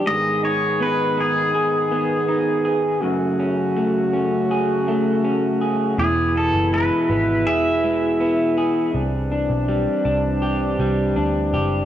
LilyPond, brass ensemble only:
\new Staff \with { instrumentName = "Brass ensemble" } { \time 4/4 \key e \major \tempo 4 = 81 << { <dis b gis'>1 | <cis a fis'>1 | <b, b e'>1 | <g c' d'>1 | } \\ { r1 | r1 | e1~ | e1 | } >> }